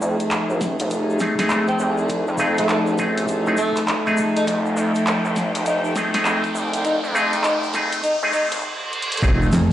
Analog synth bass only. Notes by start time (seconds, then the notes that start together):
0.01 F2
0.50 A1
0.80 F1
1.80 C2
2.28 F2
2.69 A1
4.47 F1
4.77 F2
5.25 A1
5.54 F1
6.55 C2
7.03 F2
7.44 F1
8.52 D#1
9.23 F1